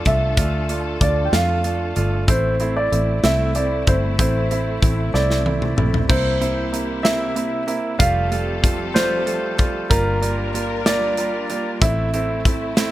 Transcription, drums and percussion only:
0.05 kick, closed hi-hat
0.37 kick, closed hi-hat
0.69 closed hi-hat
1.01 kick, closed hi-hat
1.33 snare, closed hi-hat
1.64 closed hi-hat
1.96 closed hi-hat
2.28 kick, closed hi-hat
2.60 closed hi-hat
2.93 closed hi-hat
3.24 snare, closed hi-hat
3.55 closed hi-hat
3.87 kick, closed hi-hat
4.19 kick, closed hi-hat
4.51 closed hi-hat
4.82 kick, closed hi-hat
5.15 snare
5.30 snare
5.46 high tom
5.62 mid tom
5.78 mid tom
5.94 floor tom
6.10 kick, crash
6.42 closed hi-hat
6.74 closed hi-hat
7.05 snare, closed hi-hat
7.36 closed hi-hat
7.68 closed hi-hat
8.00 kick, closed hi-hat
8.32 closed hi-hat
8.64 kick, closed hi-hat
8.96 snare, closed hi-hat
9.27 closed hi-hat
9.59 kick, closed hi-hat
9.91 kick, closed hi-hat
10.23 closed hi-hat
10.55 closed hi-hat
10.86 snare, closed hi-hat
11.17 closed hi-hat
11.50 closed hi-hat
11.82 kick, closed hi-hat
12.14 closed hi-hat
12.45 kick, closed hi-hat
12.77 snare, closed hi-hat

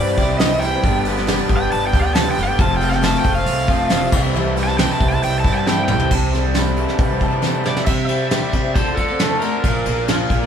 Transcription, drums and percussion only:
0.08 tambourine
0.17 kick, open hi-hat, tambourine
0.31 tambourine
0.39 snare, open hi-hat, tambourine
0.62 open hi-hat, tambourine
0.74 tambourine
0.84 kick, open hi-hat, tambourine
0.95 tambourine
1.05 open hi-hat, tambourine
1.17 snare, tambourine
1.27 snare, open hi-hat, tambourine
1.38 tambourine
1.48 kick, open hi-hat, tambourine
1.71 open hi-hat, tambourine
1.82 tambourine
1.94 kick, open hi-hat, tambourine
2.06 tambourine
2.15 snare, open hi-hat, tambourine
2.28 tambourine
2.37 open hi-hat, tambourine
2.50 tambourine
2.59 kick, open hi-hat, tambourine
2.72 tambourine
2.81 open hi-hat, tambourine
2.92 snare, tambourine
3.03 snare, open hi-hat, tambourine
3.16 tambourine
3.25 kick, open hi-hat, tambourine
3.46 open hi-hat, tambourine
3.60 tambourine
3.68 kick, tambourine
3.83 tambourine
3.90 snare, open hi-hat, tambourine
4.04 tambourine
4.12 kick, tambourine, crash
4.26 tambourine
4.37 tambourine
4.48 tambourine
4.56 open hi-hat, tambourine
4.68 snare
4.78 snare, open hi-hat, tambourine
4.91 tambourine
5.00 kick, open hi-hat, tambourine
5.14 tambourine
5.23 open hi-hat, tambourine
5.44 kick, open hi-hat, tambourine
5.67 snare, tambourine
5.88 mid tom, tambourine
5.99 floor tom, tambourine
6.11 kick, crash
6.33 snare, open hi-hat
6.54 snare, open hi-hat, tambourine
6.76 open hi-hat
6.88 snare
6.98 kick, open hi-hat
7.20 kick, open hi-hat
7.43 snare, tambourine
7.65 snare
7.76 snare
7.86 kick, crash
8.09 ride
8.31 snare, ride
8.53 kick, ride
8.75 kick, ride
8.97 kick, ride
9.19 snare, ride
9.41 ride
9.64 kick, ride
9.85 ride
10.08 snare, ride
10.30 kick, ride

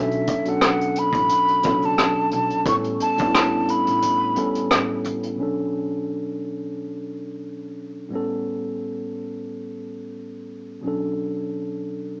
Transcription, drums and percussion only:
0.11 closed hi-hat
0.27 kick, closed hi-hat
0.45 closed hi-hat
0.61 cross-stick, closed hi-hat
0.81 closed hi-hat
0.96 closed hi-hat
1.13 kick, closed hi-hat
1.29 closed hi-hat
1.48 closed hi-hat
1.63 kick, closed hi-hat
1.82 closed hi-hat
1.98 cross-stick, closed hi-hat
2.31 closed hi-hat
2.50 closed hi-hat
2.66 kick, closed hi-hat
2.84 closed hi-hat
3.00 closed hi-hat
3.18 kick, closed hi-hat
3.35 cross-stick, closed hi-hat
3.69 closed hi-hat
3.87 closed hi-hat
4.02 closed hi-hat
4.36 closed hi-hat
4.55 closed hi-hat
4.71 cross-stick, closed hi-hat
5.04 closed hi-hat
5.23 closed hi-hat

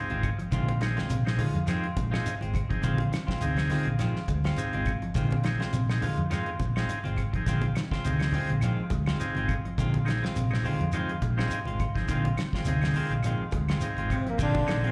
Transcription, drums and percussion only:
0.10 closed hi-hat, high conga
0.23 kick, closed hi-hat, high conga, low conga, claves, shekere
0.39 closed hi-hat
0.52 kick, closed hi-hat, shekere
0.68 closed hi-hat, high conga
0.81 snare, closed hi-hat, claves, shekere
0.97 snare, closed hi-hat, high conga
1.10 closed hi-hat, shekere
1.27 snare, claves
1.39 open hi-hat, high conga, low conga, shekere
1.55 closed hi-hat
1.67 snare, closed hi-hat, claves, shekere
1.84 closed hi-hat
1.97 kick, closed hi-hat, high conga, shekere
2.14 snare, claves
2.26 closed hi-hat, shekere
2.41 closed hi-hat, high conga
2.54 kick, closed hi-hat, high conga, low conga, claves, shekere
2.71 kick, closed hi-hat
2.82 kick, closed hi-hat, low conga, shekere
2.98 closed hi-hat, high conga
3.13 snare, closed hi-hat, claves, shekere
3.28 kick, snare
3.41 closed hi-hat, shekere
3.57 snare, closed hi-hat, claves
3.70 snare, open hi-hat, high conga, low conga, shekere
3.85 closed hi-hat
3.99 snare, closed hi-hat, high conga, claves, shekere
4.16 snare
4.28 kick, closed hi-hat, high conga, shekere
4.44 snare, closed hi-hat, claves
4.56 closed hi-hat, shekere
4.73 closed hi-hat, high conga
4.86 kick, closed hi-hat, low conga, claves, shekere
5.02 closed hi-hat
5.14 kick, snare, closed hi-hat, shekere
5.31 closed hi-hat, high conga
5.44 snare, closed hi-hat, claves, shekere
5.60 snare, closed hi-hat
5.73 closed hi-hat, shekere
5.89 snare, claves
6.02 open hi-hat, high conga, low conga, shekere
6.17 closed hi-hat
6.31 snare, closed hi-hat, high conga, claves, shekere
6.46 closed hi-hat
6.60 kick, closed hi-hat, high conga, low conga, shekere
6.76 snare, claves
6.89 closed hi-hat, shekere
7.04 closed hi-hat, high conga
7.16 kick, closed hi-hat, low conga, claves, shekere
7.34 kick, closed hi-hat
7.46 kick, snare, closed hi-hat, low conga, shekere
7.61 closed hi-hat, high conga
7.75 snare, closed hi-hat, claves, shekere
7.91 kick, snare
8.05 closed hi-hat, shekere
8.19 snare, closed hi-hat, claves
8.32 open hi-hat, high conga, low conga, shekere
8.50 closed hi-hat
8.61 closed hi-hat, high conga, claves, shekere
8.90 kick, closed hi-hat, high conga, low conga, shekere
9.06 snare, closed hi-hat, claves
9.20 closed hi-hat, shekere
9.35 closed hi-hat, high conga
9.48 kick, closed hi-hat, high conga, low conga, claves, shekere
9.65 closed hi-hat
9.78 kick, closed hi-hat, low conga, shekere
9.94 closed hi-hat, high conga
10.06 snare, closed hi-hat, claves, shekere
10.22 snare, closed hi-hat, high conga
10.36 closed hi-hat, shekere
10.51 snare, claves
10.64 open hi-hat, high conga, low conga, shekere
10.81 closed hi-hat
10.92 closed hi-hat, high conga, claves, shekere
11.09 closed hi-hat
11.22 kick, closed hi-hat, high conga, low conga, shekere
11.39 snare, claves
11.51 closed hi-hat, shekere
11.65 closed hi-hat, high conga
11.79 kick, closed hi-hat, high conga, low conga, claves, shekere
11.95 kick, snare, closed hi-hat
12.08 kick, closed hi-hat, low conga, shekere
12.25 closed hi-hat, high conga
12.37 snare, closed hi-hat, claves, shekere
12.53 kick, snare
12.65 closed hi-hat, shekere
12.81 snare, closed hi-hat, claves
12.94 open hi-hat, high conga, low conga, shekere
13.11 closed hi-hat
13.23 closed hi-hat, high conga, claves, shekere
13.51 kick, closed hi-hat, high conga, shekere
13.69 snare, closed hi-hat, claves
13.81 closed hi-hat, shekere
13.97 closed hi-hat, high conga
14.10 kick, closed hi-hat, low conga, claves, shekere
14.27 closed hi-hat
14.39 kick, crash, shekere
14.55 kick, high conga
14.68 snare, closed hi-hat, claves, shekere
14.84 closed hi-hat

